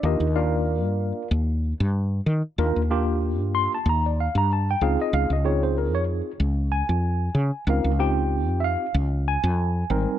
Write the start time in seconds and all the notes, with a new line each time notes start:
0.03 D#2 A#3 D4 D#4 F4 G4 A#4 D#5
0.20 D#2
0.36 A#3 D4 F4 A#4 D5 F5
0.84 G2
1.31 D#2
1.80 G2
2.26 D#3
2.58 D#2 A#3 D4 F4 A#4
2.76 D#2
2.91 A#3 D4 F4 G4
3.40 G2
3.55 C6
3.75 A5
3.86 D#2 A#5
4.06 D5
4.20 F5
4.35 G2 A#5
4.53 A5
4.71 G5
4.81 C#2 C4 D#4 F4 G#4 F5
5.01 D#5
5.13 C#2 F5
5.30 C#2 D#5
5.45 C4 D#4 F4 G#4 C#5
5.63 C5
5.78 A#4
5.94 F2 C#5
6.40 C#2
6.72 G#5
6.89 F2
7.35 C#3
7.67 C#2 C4 D#4 F4 A#4 F5
7.84 C#2
7.99 C4 D#4 F4 G4 G5
8.48 F2
8.60 E5
8.64 F5
8.94 C#2
9.28 G#5
9.44 F2
9.90 G#1 G3 C4 D#4 A#4